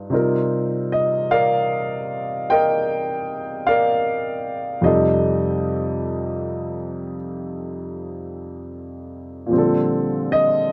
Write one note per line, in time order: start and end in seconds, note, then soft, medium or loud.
0.00 0.11 D#4 soft
0.00 0.12 F4 soft
0.00 0.15 B4 soft
0.10 4.80 C3 soft
0.10 4.81 G3 soft
0.10 4.82 C4 soft
0.10 4.82 D#4 soft
0.10 4.82 F4 soft
0.14 1.30 A#4 soft
0.92 1.31 D#5 medium
1.31 2.50 A#4 soft
1.31 3.61 D5 soft
1.31 2.51 F5 medium
2.50 3.67 A#4 medium
2.50 4.80 D#5 medium
2.50 3.62 G5 medium
3.67 4.80 A#4 soft
3.67 4.79 D5 medium
3.67 4.86 F5 medium
4.81 9.51 F2 soft
4.81 9.51 C3 soft
4.81 9.50 G3 soft
4.81 6.74 D#5 medium
4.86 9.53 D#4 soft
4.86 7.14 G4 soft
4.86 7.14 A4 soft
9.46 10.72 A#2 soft
9.46 10.72 F3 soft
9.51 10.72 G3 soft
9.51 10.72 C4 soft
9.56 10.72 D3 soft
9.56 10.72 A4 soft
10.32 10.71 D#5 medium